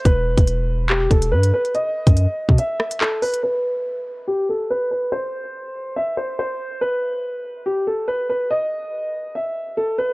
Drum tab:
HH |x--xx-----xx-x-x|x--xx---x--x--ox|----------------|----------------|
CP |--------x-------|------------x---|----------------|----------------|
SD |----------------|----------r-----|----------------|----------------|
BD |o--o------o-----|---o---o--------|----------------|----------------|

HH |----------------|----------------|
CP |----------------|----------------|
SD |----------------|----------------|
BD |----------------|----------------|